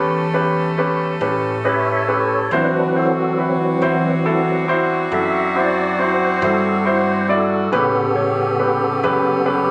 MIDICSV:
0, 0, Header, 1, 5, 480
1, 0, Start_track
1, 0, Tempo, 868307
1, 1390, Time_signature, 12, 3, 24, 8
1, 5367, End_track
2, 0, Start_track
2, 0, Title_t, "Tonewheel organ"
2, 0, Program_c, 0, 16
2, 907, Note_on_c, 0, 75, 59
2, 921, Note_on_c, 0, 73, 78
2, 926, Note_on_c, 0, 76, 86
2, 930, Note_off_c, 0, 75, 0
2, 1139, Note_off_c, 0, 73, 0
2, 1151, Note_off_c, 0, 76, 0
2, 1158, Note_on_c, 0, 69, 86
2, 1162, Note_on_c, 0, 73, 87
2, 1378, Note_off_c, 0, 69, 0
2, 1389, Note_off_c, 0, 73, 0
2, 1397, Note_on_c, 0, 52, 59
2, 1400, Note_on_c, 0, 54, 53
2, 1405, Note_on_c, 0, 60, 65
2, 1408, Note_on_c, 0, 62, 75
2, 1413, Note_on_c, 0, 71, 91
2, 1623, Note_off_c, 0, 62, 0
2, 1634, Note_off_c, 0, 71, 0
2, 1646, Note_on_c, 0, 66, 89
2, 1648, Note_on_c, 0, 69, 97
2, 1861, Note_off_c, 0, 66, 0
2, 1872, Note_off_c, 0, 69, 0
2, 2349, Note_off_c, 0, 52, 0
2, 2353, Note_off_c, 0, 60, 0
2, 2355, Note_on_c, 0, 52, 53
2, 2356, Note_off_c, 0, 54, 0
2, 2363, Note_on_c, 0, 54, 48
2, 2570, Note_off_c, 0, 52, 0
2, 2574, Note_off_c, 0, 54, 0
2, 2840, Note_on_c, 0, 76, 97
2, 3068, Note_off_c, 0, 76, 0
2, 3088, Note_on_c, 0, 74, 83
2, 3312, Note_off_c, 0, 74, 0
2, 3328, Note_on_c, 0, 72, 80
2, 3552, Note_off_c, 0, 72, 0
2, 3561, Note_on_c, 0, 69, 89
2, 3788, Note_off_c, 0, 69, 0
2, 3805, Note_on_c, 0, 72, 85
2, 4030, Note_off_c, 0, 72, 0
2, 4041, Note_on_c, 0, 69, 94
2, 4268, Note_off_c, 0, 69, 0
2, 4268, Note_on_c, 0, 68, 74
2, 4278, Note_on_c, 0, 49, 56
2, 4281, Note_on_c, 0, 59, 64
2, 4282, Note_on_c, 0, 67, 52
2, 4291, Note_off_c, 0, 68, 0
2, 4294, Note_on_c, 0, 69, 108
2, 5367, Note_off_c, 0, 49, 0
2, 5367, Note_off_c, 0, 59, 0
2, 5367, Note_off_c, 0, 67, 0
2, 5367, Note_off_c, 0, 69, 0
2, 5367, End_track
3, 0, Start_track
3, 0, Title_t, "Upright piano"
3, 0, Program_c, 1, 0
3, 0, Note_on_c, 1, 61, 68
3, 0, Note_on_c, 1, 67, 60
3, 0, Note_on_c, 1, 71, 71
3, 127, Note_off_c, 1, 61, 0
3, 128, Note_off_c, 1, 67, 0
3, 128, Note_off_c, 1, 71, 0
3, 186, Note_on_c, 1, 61, 62
3, 188, Note_on_c, 1, 67, 64
3, 190, Note_on_c, 1, 71, 73
3, 368, Note_off_c, 1, 61, 0
3, 369, Note_off_c, 1, 67, 0
3, 370, Note_off_c, 1, 71, 0
3, 430, Note_on_c, 1, 61, 63
3, 432, Note_on_c, 1, 67, 60
3, 434, Note_on_c, 1, 71, 70
3, 610, Note_off_c, 1, 61, 0
3, 611, Note_off_c, 1, 67, 0
3, 612, Note_off_c, 1, 71, 0
3, 669, Note_on_c, 1, 61, 59
3, 670, Note_on_c, 1, 67, 54
3, 672, Note_on_c, 1, 71, 64
3, 849, Note_off_c, 1, 61, 0
3, 850, Note_off_c, 1, 67, 0
3, 851, Note_off_c, 1, 71, 0
3, 909, Note_on_c, 1, 67, 55
3, 910, Note_on_c, 1, 61, 60
3, 913, Note_on_c, 1, 71, 65
3, 1090, Note_off_c, 1, 61, 0
3, 1090, Note_off_c, 1, 67, 0
3, 1091, Note_off_c, 1, 71, 0
3, 1151, Note_on_c, 1, 61, 56
3, 1152, Note_on_c, 1, 67, 53
3, 1152, Note_on_c, 1, 71, 65
3, 1330, Note_off_c, 1, 61, 0
3, 1331, Note_off_c, 1, 67, 0
3, 1331, Note_off_c, 1, 71, 0
3, 1393, Note_on_c, 1, 64, 65
3, 1396, Note_on_c, 1, 66, 62
3, 1397, Note_on_c, 1, 72, 78
3, 1572, Note_off_c, 1, 64, 0
3, 1573, Note_off_c, 1, 66, 0
3, 1573, Note_off_c, 1, 72, 0
3, 1633, Note_on_c, 1, 64, 55
3, 1637, Note_on_c, 1, 66, 47
3, 1637, Note_on_c, 1, 72, 58
3, 1811, Note_off_c, 1, 64, 0
3, 1813, Note_off_c, 1, 66, 0
3, 1813, Note_off_c, 1, 72, 0
3, 1868, Note_on_c, 1, 64, 53
3, 1871, Note_on_c, 1, 66, 49
3, 1876, Note_on_c, 1, 71, 59
3, 2049, Note_off_c, 1, 64, 0
3, 2050, Note_off_c, 1, 66, 0
3, 2053, Note_off_c, 1, 71, 0
3, 2113, Note_on_c, 1, 64, 72
3, 2114, Note_on_c, 1, 66, 64
3, 2114, Note_on_c, 1, 72, 76
3, 2291, Note_off_c, 1, 64, 0
3, 2292, Note_off_c, 1, 66, 0
3, 2292, Note_off_c, 1, 72, 0
3, 2351, Note_on_c, 1, 64, 72
3, 2353, Note_on_c, 1, 66, 64
3, 2354, Note_on_c, 1, 69, 79
3, 2530, Note_off_c, 1, 64, 0
3, 2532, Note_off_c, 1, 66, 0
3, 2532, Note_off_c, 1, 69, 0
3, 2587, Note_on_c, 1, 64, 75
3, 2589, Note_on_c, 1, 66, 71
3, 2592, Note_on_c, 1, 72, 83
3, 2768, Note_off_c, 1, 64, 0
3, 2770, Note_off_c, 1, 66, 0
3, 2771, Note_off_c, 1, 72, 0
3, 2828, Note_on_c, 1, 64, 56
3, 2829, Note_on_c, 1, 66, 53
3, 2834, Note_on_c, 1, 69, 66
3, 3009, Note_off_c, 1, 64, 0
3, 3009, Note_off_c, 1, 66, 0
3, 3012, Note_off_c, 1, 69, 0
3, 3072, Note_on_c, 1, 64, 57
3, 3072, Note_on_c, 1, 66, 53
3, 3075, Note_on_c, 1, 72, 60
3, 3251, Note_off_c, 1, 64, 0
3, 3251, Note_off_c, 1, 66, 0
3, 3252, Note_off_c, 1, 72, 0
3, 3311, Note_on_c, 1, 64, 55
3, 3312, Note_on_c, 1, 66, 52
3, 3314, Note_on_c, 1, 72, 58
3, 3491, Note_off_c, 1, 64, 0
3, 3491, Note_off_c, 1, 66, 0
3, 3492, Note_off_c, 1, 72, 0
3, 3550, Note_on_c, 1, 64, 55
3, 3552, Note_on_c, 1, 66, 46
3, 3553, Note_on_c, 1, 72, 62
3, 3730, Note_off_c, 1, 64, 0
3, 3731, Note_off_c, 1, 66, 0
3, 3731, Note_off_c, 1, 72, 0
3, 3788, Note_on_c, 1, 64, 65
3, 3791, Note_on_c, 1, 66, 57
3, 3794, Note_on_c, 1, 72, 70
3, 3969, Note_off_c, 1, 64, 0
3, 3971, Note_off_c, 1, 66, 0
3, 3972, Note_off_c, 1, 72, 0
3, 4030, Note_on_c, 1, 64, 61
3, 4030, Note_on_c, 1, 66, 58
3, 4032, Note_on_c, 1, 74, 67
3, 4210, Note_off_c, 1, 64, 0
3, 4210, Note_off_c, 1, 66, 0
3, 4211, Note_off_c, 1, 74, 0
3, 4267, Note_on_c, 1, 61, 70
3, 4270, Note_on_c, 1, 67, 65
3, 4270, Note_on_c, 1, 71, 81
3, 4449, Note_off_c, 1, 61, 0
3, 4450, Note_off_c, 1, 67, 0
3, 4450, Note_off_c, 1, 71, 0
3, 4505, Note_on_c, 1, 67, 52
3, 4506, Note_on_c, 1, 61, 57
3, 4508, Note_on_c, 1, 73, 66
3, 4688, Note_off_c, 1, 61, 0
3, 4688, Note_off_c, 1, 67, 0
3, 4689, Note_off_c, 1, 73, 0
3, 4748, Note_on_c, 1, 61, 55
3, 4750, Note_on_c, 1, 67, 53
3, 4752, Note_on_c, 1, 71, 63
3, 4929, Note_off_c, 1, 61, 0
3, 4931, Note_off_c, 1, 67, 0
3, 4932, Note_off_c, 1, 71, 0
3, 4994, Note_on_c, 1, 67, 69
3, 4995, Note_on_c, 1, 61, 68
3, 4997, Note_on_c, 1, 71, 82
3, 5172, Note_off_c, 1, 67, 0
3, 5173, Note_off_c, 1, 61, 0
3, 5174, Note_off_c, 1, 71, 0
3, 5224, Note_on_c, 1, 61, 72
3, 5229, Note_on_c, 1, 67, 66
3, 5229, Note_on_c, 1, 71, 81
3, 5367, Note_off_c, 1, 61, 0
3, 5367, Note_off_c, 1, 67, 0
3, 5367, Note_off_c, 1, 71, 0
3, 5367, End_track
4, 0, Start_track
4, 0, Title_t, "Horn section"
4, 0, Program_c, 2, 61
4, 0, Note_on_c, 2, 57, 81
4, 0, Note_on_c, 2, 61, 72
4, 0, Note_on_c, 2, 69, 88
4, 1366, Note_off_c, 2, 57, 0
4, 1366, Note_off_c, 2, 69, 0
4, 1367, Note_off_c, 2, 61, 0
4, 1388, Note_on_c, 2, 60, 81
4, 1390, Note_on_c, 2, 54, 80
4, 1390, Note_on_c, 2, 66, 87
4, 1394, Note_on_c, 2, 62, 67
4, 4247, Note_off_c, 2, 60, 0
4, 4248, Note_off_c, 2, 54, 0
4, 4248, Note_off_c, 2, 66, 0
4, 4250, Note_off_c, 2, 62, 0
4, 4275, Note_on_c, 2, 61, 68
4, 4277, Note_on_c, 2, 55, 82
4, 4277, Note_on_c, 2, 67, 89
4, 4281, Note_on_c, 2, 57, 78
4, 5367, Note_off_c, 2, 55, 0
4, 5367, Note_off_c, 2, 57, 0
4, 5367, Note_off_c, 2, 61, 0
4, 5367, Note_off_c, 2, 67, 0
4, 5367, End_track
5, 0, Start_track
5, 0, Title_t, "Upright bass"
5, 0, Program_c, 3, 32
5, 0, Note_on_c, 3, 40, 83
5, 648, Note_off_c, 3, 40, 0
5, 668, Note_on_c, 3, 45, 93
5, 1367, Note_off_c, 3, 45, 0
5, 1388, Note_on_c, 3, 38, 86
5, 2087, Note_off_c, 3, 38, 0
5, 2110, Note_on_c, 3, 40, 88
5, 2808, Note_off_c, 3, 40, 0
5, 2829, Note_on_c, 3, 42, 90
5, 3528, Note_off_c, 3, 42, 0
5, 3549, Note_on_c, 3, 43, 100
5, 4248, Note_off_c, 3, 43, 0
5, 4271, Note_on_c, 3, 45, 91
5, 4969, Note_off_c, 3, 45, 0
5, 4995, Note_on_c, 3, 42, 89
5, 5367, Note_off_c, 3, 42, 0
5, 5367, End_track
0, 0, End_of_file